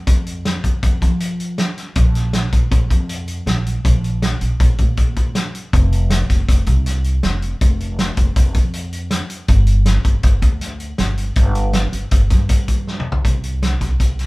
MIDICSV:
0, 0, Header, 1, 3, 480
1, 0, Start_track
1, 0, Tempo, 376176
1, 97, Time_signature, 5, 2, 24, 8
1, 18201, End_track
2, 0, Start_track
2, 0, Title_t, "Upright bass"
2, 0, Program_c, 0, 32
2, 88, Note_on_c, 0, 41, 97
2, 722, Note_off_c, 0, 41, 0
2, 819, Note_on_c, 0, 41, 77
2, 1029, Note_off_c, 0, 41, 0
2, 1059, Note_on_c, 0, 41, 77
2, 1298, Note_on_c, 0, 53, 86
2, 1317, Note_off_c, 0, 41, 0
2, 2139, Note_off_c, 0, 53, 0
2, 2501, Note_on_c, 0, 34, 108
2, 3132, Note_off_c, 0, 34, 0
2, 3221, Note_on_c, 0, 34, 76
2, 3432, Note_off_c, 0, 34, 0
2, 3461, Note_on_c, 0, 34, 85
2, 3672, Note_off_c, 0, 34, 0
2, 3703, Note_on_c, 0, 41, 100
2, 4334, Note_off_c, 0, 41, 0
2, 4418, Note_on_c, 0, 34, 80
2, 4842, Note_off_c, 0, 34, 0
2, 4910, Note_on_c, 0, 34, 102
2, 5539, Note_off_c, 0, 34, 0
2, 5627, Note_on_c, 0, 34, 74
2, 5838, Note_off_c, 0, 34, 0
2, 5868, Note_on_c, 0, 34, 80
2, 6112, Note_on_c, 0, 46, 89
2, 6131, Note_off_c, 0, 34, 0
2, 6950, Note_off_c, 0, 46, 0
2, 7315, Note_on_c, 0, 29, 110
2, 7942, Note_off_c, 0, 29, 0
2, 8032, Note_on_c, 0, 29, 76
2, 8241, Note_off_c, 0, 29, 0
2, 8274, Note_on_c, 0, 29, 72
2, 8482, Note_off_c, 0, 29, 0
2, 8511, Note_on_c, 0, 36, 95
2, 9140, Note_off_c, 0, 36, 0
2, 9229, Note_on_c, 0, 29, 75
2, 9649, Note_off_c, 0, 29, 0
2, 9713, Note_on_c, 0, 29, 94
2, 10340, Note_off_c, 0, 29, 0
2, 10428, Note_on_c, 0, 29, 75
2, 10639, Note_off_c, 0, 29, 0
2, 10666, Note_on_c, 0, 29, 72
2, 10905, Note_on_c, 0, 41, 87
2, 10924, Note_off_c, 0, 29, 0
2, 11744, Note_off_c, 0, 41, 0
2, 12102, Note_on_c, 0, 31, 107
2, 12732, Note_off_c, 0, 31, 0
2, 12820, Note_on_c, 0, 31, 81
2, 13032, Note_off_c, 0, 31, 0
2, 13058, Note_on_c, 0, 31, 72
2, 13271, Note_off_c, 0, 31, 0
2, 13295, Note_on_c, 0, 38, 101
2, 13927, Note_off_c, 0, 38, 0
2, 14021, Note_on_c, 0, 31, 85
2, 14441, Note_off_c, 0, 31, 0
2, 14500, Note_on_c, 0, 31, 97
2, 15129, Note_off_c, 0, 31, 0
2, 15217, Note_on_c, 0, 31, 70
2, 15428, Note_off_c, 0, 31, 0
2, 15458, Note_on_c, 0, 31, 81
2, 15698, Note_on_c, 0, 43, 89
2, 15717, Note_off_c, 0, 31, 0
2, 16537, Note_off_c, 0, 43, 0
2, 16901, Note_on_c, 0, 36, 91
2, 17529, Note_off_c, 0, 36, 0
2, 17616, Note_on_c, 0, 36, 68
2, 17828, Note_off_c, 0, 36, 0
2, 17863, Note_on_c, 0, 36, 73
2, 18201, Note_off_c, 0, 36, 0
2, 18201, End_track
3, 0, Start_track
3, 0, Title_t, "Drums"
3, 88, Note_on_c, 9, 42, 82
3, 92, Note_on_c, 9, 36, 104
3, 216, Note_off_c, 9, 42, 0
3, 220, Note_off_c, 9, 36, 0
3, 339, Note_on_c, 9, 42, 59
3, 466, Note_off_c, 9, 42, 0
3, 579, Note_on_c, 9, 38, 115
3, 579, Note_on_c, 9, 42, 75
3, 707, Note_off_c, 9, 38, 0
3, 707, Note_off_c, 9, 42, 0
3, 816, Note_on_c, 9, 36, 76
3, 821, Note_on_c, 9, 42, 56
3, 944, Note_off_c, 9, 36, 0
3, 949, Note_off_c, 9, 42, 0
3, 1057, Note_on_c, 9, 42, 75
3, 1058, Note_on_c, 9, 36, 92
3, 1184, Note_off_c, 9, 42, 0
3, 1186, Note_off_c, 9, 36, 0
3, 1300, Note_on_c, 9, 36, 73
3, 1304, Note_on_c, 9, 42, 56
3, 1428, Note_off_c, 9, 36, 0
3, 1431, Note_off_c, 9, 42, 0
3, 1535, Note_on_c, 9, 42, 71
3, 1663, Note_off_c, 9, 42, 0
3, 1783, Note_on_c, 9, 42, 51
3, 1911, Note_off_c, 9, 42, 0
3, 2017, Note_on_c, 9, 38, 109
3, 2017, Note_on_c, 9, 42, 69
3, 2145, Note_off_c, 9, 38, 0
3, 2145, Note_off_c, 9, 42, 0
3, 2266, Note_on_c, 9, 38, 29
3, 2266, Note_on_c, 9, 42, 55
3, 2394, Note_off_c, 9, 38, 0
3, 2394, Note_off_c, 9, 42, 0
3, 2493, Note_on_c, 9, 42, 79
3, 2501, Note_on_c, 9, 36, 113
3, 2621, Note_off_c, 9, 42, 0
3, 2629, Note_off_c, 9, 36, 0
3, 2744, Note_on_c, 9, 38, 32
3, 2744, Note_on_c, 9, 42, 59
3, 2872, Note_off_c, 9, 38, 0
3, 2872, Note_off_c, 9, 42, 0
3, 2977, Note_on_c, 9, 38, 108
3, 2977, Note_on_c, 9, 42, 84
3, 3104, Note_off_c, 9, 38, 0
3, 3104, Note_off_c, 9, 42, 0
3, 3223, Note_on_c, 9, 42, 70
3, 3224, Note_on_c, 9, 36, 79
3, 3351, Note_off_c, 9, 42, 0
3, 3352, Note_off_c, 9, 36, 0
3, 3465, Note_on_c, 9, 42, 75
3, 3466, Note_on_c, 9, 36, 100
3, 3592, Note_off_c, 9, 42, 0
3, 3593, Note_off_c, 9, 36, 0
3, 3707, Note_on_c, 9, 36, 71
3, 3709, Note_on_c, 9, 42, 62
3, 3835, Note_off_c, 9, 36, 0
3, 3837, Note_off_c, 9, 42, 0
3, 3945, Note_on_c, 9, 42, 78
3, 4073, Note_off_c, 9, 42, 0
3, 4180, Note_on_c, 9, 42, 56
3, 4308, Note_off_c, 9, 42, 0
3, 4427, Note_on_c, 9, 38, 108
3, 4427, Note_on_c, 9, 42, 77
3, 4555, Note_off_c, 9, 38, 0
3, 4555, Note_off_c, 9, 42, 0
3, 4676, Note_on_c, 9, 42, 57
3, 4804, Note_off_c, 9, 42, 0
3, 4911, Note_on_c, 9, 36, 108
3, 4918, Note_on_c, 9, 42, 81
3, 5039, Note_off_c, 9, 36, 0
3, 5046, Note_off_c, 9, 42, 0
3, 5156, Note_on_c, 9, 42, 56
3, 5283, Note_off_c, 9, 42, 0
3, 5389, Note_on_c, 9, 38, 105
3, 5389, Note_on_c, 9, 42, 82
3, 5517, Note_off_c, 9, 38, 0
3, 5517, Note_off_c, 9, 42, 0
3, 5627, Note_on_c, 9, 42, 59
3, 5754, Note_off_c, 9, 42, 0
3, 5869, Note_on_c, 9, 42, 75
3, 5870, Note_on_c, 9, 36, 98
3, 5997, Note_off_c, 9, 42, 0
3, 5998, Note_off_c, 9, 36, 0
3, 6104, Note_on_c, 9, 42, 53
3, 6109, Note_on_c, 9, 36, 76
3, 6231, Note_off_c, 9, 42, 0
3, 6237, Note_off_c, 9, 36, 0
3, 6344, Note_on_c, 9, 42, 74
3, 6350, Note_on_c, 9, 36, 91
3, 6471, Note_off_c, 9, 42, 0
3, 6477, Note_off_c, 9, 36, 0
3, 6589, Note_on_c, 9, 42, 59
3, 6592, Note_on_c, 9, 36, 71
3, 6716, Note_off_c, 9, 42, 0
3, 6720, Note_off_c, 9, 36, 0
3, 6828, Note_on_c, 9, 38, 106
3, 6828, Note_on_c, 9, 42, 80
3, 6955, Note_off_c, 9, 38, 0
3, 6955, Note_off_c, 9, 42, 0
3, 7078, Note_on_c, 9, 42, 57
3, 7205, Note_off_c, 9, 42, 0
3, 7315, Note_on_c, 9, 42, 74
3, 7316, Note_on_c, 9, 36, 113
3, 7443, Note_off_c, 9, 36, 0
3, 7443, Note_off_c, 9, 42, 0
3, 7560, Note_on_c, 9, 42, 64
3, 7687, Note_off_c, 9, 42, 0
3, 7788, Note_on_c, 9, 38, 108
3, 7788, Note_on_c, 9, 42, 86
3, 7915, Note_off_c, 9, 38, 0
3, 7915, Note_off_c, 9, 42, 0
3, 8037, Note_on_c, 9, 38, 35
3, 8037, Note_on_c, 9, 42, 67
3, 8038, Note_on_c, 9, 36, 82
3, 8165, Note_off_c, 9, 36, 0
3, 8165, Note_off_c, 9, 38, 0
3, 8165, Note_off_c, 9, 42, 0
3, 8274, Note_on_c, 9, 38, 33
3, 8274, Note_on_c, 9, 42, 80
3, 8275, Note_on_c, 9, 36, 99
3, 8401, Note_off_c, 9, 38, 0
3, 8401, Note_off_c, 9, 42, 0
3, 8403, Note_off_c, 9, 36, 0
3, 8504, Note_on_c, 9, 42, 64
3, 8513, Note_on_c, 9, 36, 74
3, 8631, Note_off_c, 9, 42, 0
3, 8641, Note_off_c, 9, 36, 0
3, 8753, Note_on_c, 9, 38, 30
3, 8753, Note_on_c, 9, 42, 74
3, 8881, Note_off_c, 9, 38, 0
3, 8881, Note_off_c, 9, 42, 0
3, 8987, Note_on_c, 9, 42, 53
3, 9114, Note_off_c, 9, 42, 0
3, 9228, Note_on_c, 9, 38, 104
3, 9228, Note_on_c, 9, 42, 69
3, 9355, Note_off_c, 9, 38, 0
3, 9355, Note_off_c, 9, 42, 0
3, 9470, Note_on_c, 9, 42, 51
3, 9598, Note_off_c, 9, 42, 0
3, 9710, Note_on_c, 9, 42, 76
3, 9714, Note_on_c, 9, 36, 106
3, 9838, Note_off_c, 9, 42, 0
3, 9842, Note_off_c, 9, 36, 0
3, 9958, Note_on_c, 9, 42, 55
3, 10086, Note_off_c, 9, 42, 0
3, 10191, Note_on_c, 9, 38, 110
3, 10191, Note_on_c, 9, 42, 74
3, 10319, Note_off_c, 9, 38, 0
3, 10319, Note_off_c, 9, 42, 0
3, 10423, Note_on_c, 9, 42, 62
3, 10429, Note_on_c, 9, 36, 84
3, 10551, Note_off_c, 9, 42, 0
3, 10557, Note_off_c, 9, 36, 0
3, 10666, Note_on_c, 9, 42, 74
3, 10670, Note_on_c, 9, 36, 104
3, 10793, Note_off_c, 9, 42, 0
3, 10797, Note_off_c, 9, 36, 0
3, 10901, Note_on_c, 9, 42, 57
3, 10906, Note_on_c, 9, 36, 74
3, 11029, Note_off_c, 9, 42, 0
3, 11034, Note_off_c, 9, 36, 0
3, 11146, Note_on_c, 9, 42, 70
3, 11273, Note_off_c, 9, 42, 0
3, 11389, Note_on_c, 9, 42, 56
3, 11517, Note_off_c, 9, 42, 0
3, 11619, Note_on_c, 9, 38, 101
3, 11619, Note_on_c, 9, 42, 86
3, 11746, Note_off_c, 9, 38, 0
3, 11746, Note_off_c, 9, 42, 0
3, 11862, Note_on_c, 9, 42, 60
3, 11989, Note_off_c, 9, 42, 0
3, 12098, Note_on_c, 9, 42, 78
3, 12104, Note_on_c, 9, 36, 103
3, 12225, Note_off_c, 9, 42, 0
3, 12232, Note_off_c, 9, 36, 0
3, 12333, Note_on_c, 9, 42, 66
3, 12461, Note_off_c, 9, 42, 0
3, 12577, Note_on_c, 9, 38, 107
3, 12577, Note_on_c, 9, 42, 91
3, 12704, Note_off_c, 9, 38, 0
3, 12704, Note_off_c, 9, 42, 0
3, 12819, Note_on_c, 9, 42, 64
3, 12821, Note_on_c, 9, 36, 80
3, 12947, Note_off_c, 9, 42, 0
3, 12949, Note_off_c, 9, 36, 0
3, 13055, Note_on_c, 9, 42, 80
3, 13062, Note_on_c, 9, 36, 104
3, 13182, Note_off_c, 9, 42, 0
3, 13189, Note_off_c, 9, 36, 0
3, 13299, Note_on_c, 9, 42, 60
3, 13302, Note_on_c, 9, 36, 77
3, 13426, Note_off_c, 9, 42, 0
3, 13429, Note_off_c, 9, 36, 0
3, 13540, Note_on_c, 9, 38, 31
3, 13540, Note_on_c, 9, 42, 78
3, 13668, Note_off_c, 9, 38, 0
3, 13668, Note_off_c, 9, 42, 0
3, 13779, Note_on_c, 9, 42, 56
3, 13906, Note_off_c, 9, 42, 0
3, 14014, Note_on_c, 9, 38, 97
3, 14014, Note_on_c, 9, 42, 74
3, 14142, Note_off_c, 9, 38, 0
3, 14142, Note_off_c, 9, 42, 0
3, 14260, Note_on_c, 9, 42, 56
3, 14388, Note_off_c, 9, 42, 0
3, 14490, Note_on_c, 9, 42, 70
3, 14500, Note_on_c, 9, 36, 104
3, 14617, Note_off_c, 9, 42, 0
3, 14627, Note_off_c, 9, 36, 0
3, 14738, Note_on_c, 9, 42, 56
3, 14865, Note_off_c, 9, 42, 0
3, 14972, Note_on_c, 9, 38, 110
3, 14972, Note_on_c, 9, 42, 81
3, 15099, Note_off_c, 9, 38, 0
3, 15099, Note_off_c, 9, 42, 0
3, 15220, Note_on_c, 9, 42, 61
3, 15348, Note_off_c, 9, 42, 0
3, 15454, Note_on_c, 9, 42, 82
3, 15461, Note_on_c, 9, 36, 104
3, 15581, Note_off_c, 9, 42, 0
3, 15588, Note_off_c, 9, 36, 0
3, 15698, Note_on_c, 9, 38, 31
3, 15698, Note_on_c, 9, 42, 60
3, 15701, Note_on_c, 9, 36, 76
3, 15825, Note_off_c, 9, 38, 0
3, 15825, Note_off_c, 9, 42, 0
3, 15828, Note_off_c, 9, 36, 0
3, 15936, Note_on_c, 9, 42, 77
3, 15942, Note_on_c, 9, 36, 95
3, 16064, Note_off_c, 9, 42, 0
3, 16070, Note_off_c, 9, 36, 0
3, 16180, Note_on_c, 9, 42, 59
3, 16182, Note_on_c, 9, 36, 73
3, 16307, Note_off_c, 9, 42, 0
3, 16310, Note_off_c, 9, 36, 0
3, 16427, Note_on_c, 9, 38, 56
3, 16555, Note_off_c, 9, 38, 0
3, 16585, Note_on_c, 9, 45, 70
3, 16713, Note_off_c, 9, 45, 0
3, 16741, Note_on_c, 9, 43, 93
3, 16869, Note_off_c, 9, 43, 0
3, 16904, Note_on_c, 9, 36, 91
3, 16906, Note_on_c, 9, 42, 74
3, 17031, Note_off_c, 9, 36, 0
3, 17034, Note_off_c, 9, 42, 0
3, 17143, Note_on_c, 9, 42, 60
3, 17271, Note_off_c, 9, 42, 0
3, 17386, Note_on_c, 9, 38, 97
3, 17386, Note_on_c, 9, 42, 73
3, 17514, Note_off_c, 9, 38, 0
3, 17514, Note_off_c, 9, 42, 0
3, 17623, Note_on_c, 9, 36, 69
3, 17624, Note_on_c, 9, 38, 30
3, 17624, Note_on_c, 9, 42, 59
3, 17751, Note_off_c, 9, 36, 0
3, 17751, Note_off_c, 9, 38, 0
3, 17751, Note_off_c, 9, 42, 0
3, 17863, Note_on_c, 9, 36, 85
3, 17864, Note_on_c, 9, 42, 68
3, 17991, Note_off_c, 9, 36, 0
3, 17992, Note_off_c, 9, 42, 0
3, 18105, Note_on_c, 9, 38, 30
3, 18105, Note_on_c, 9, 42, 53
3, 18201, Note_off_c, 9, 38, 0
3, 18201, Note_off_c, 9, 42, 0
3, 18201, End_track
0, 0, End_of_file